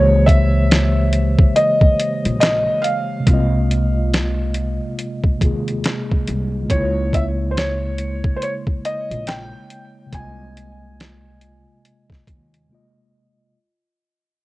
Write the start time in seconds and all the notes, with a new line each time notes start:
Already playing: C#2 C#3 E3 G#3 A#3 G4 C5 C#5
0.26 E5, kick, closed hi-hat
0.71 snare, closed hi-hat
1.13 closed hi-hat
1.39 kick
1.56 D#5, closed hi-hat
1.81 kick
2.00 closed hi-hat
2.25 A#1, closed hi-hat
2.40 D#5, snare, closed hi-hat
2.82 F5, closed hi-hat
3.20 C3 G#3
3.27 C2 A#3 F4, kick, closed hi-hat
3.33 D#5
3.71 closed hi-hat
4.14 snare, closed hi-hat
4.54 closed hi-hat
4.99 closed hi-hat
5.24 kick
5.38 C3 G#3 A#3, kick
5.42 D#2 F4 G#4, closed hi-hat
5.68 closed hi-hat
5.84 snare, closed hi-hat
6.12 kick
6.28 C2, closed hi-hat
6.63 C#3 G#3
6.70 C#2 A#3 E4 C#5, kick, closed hi-hat
6.77 C#5
7.13 E5, kick, closed hi-hat
7.51 C5
7.57 C#5, snare, closed hi-hat
7.98 closed hi-hat
8.24 kick
8.36 C5
8.42 C#5, closed hi-hat
8.67 kick
8.85 D#5, closed hi-hat
9.11 A#1, closed hi-hat
9.27 G5, snare, closed hi-hat
9.70 closed hi-hat
10.06 C3 G#3
10.13 C2 A#3 G#5, kick, closed hi-hat
10.17 F4 D#5
10.57 closed hi-hat
11.00 snare, closed hi-hat
11.41 closed hi-hat
11.85 closed hi-hat
12.10 kick, snare
12.27 D#2, kick, closed hi-hat
12.54 closed hi-hat
12.67 C3 G#3 A#3
12.72 F4 D#5